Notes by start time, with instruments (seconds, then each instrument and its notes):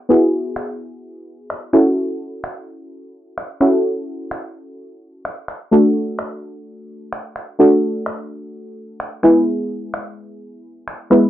0.09 synth stab B3 E4 F#4 G#4
0.56 finger snap
1.50 finger snap
1.73 synth stab C#4 E4 F#4 A4, finger snap
2.44 finger snap
3.38 finger snap
3.60 synth stab C#4 E4 F#4 A4, finger snap
4.31 finger snap
5.25 finger snap
5.48 finger snap
5.71 synth stab A3 D4 F#4 A4
6.19 finger snap
7.13 finger snap
7.36 finger snap
7.59 synth stab A3 D4 F#4 A4
8.06 finger snap
9.00 finger snap
9.23 synth stab G#3 B3 E4 G#4, finger snap
9.94 finger snap
10.88 finger snap
11.10 synth stab G#3 B3 E4 B4, finger snap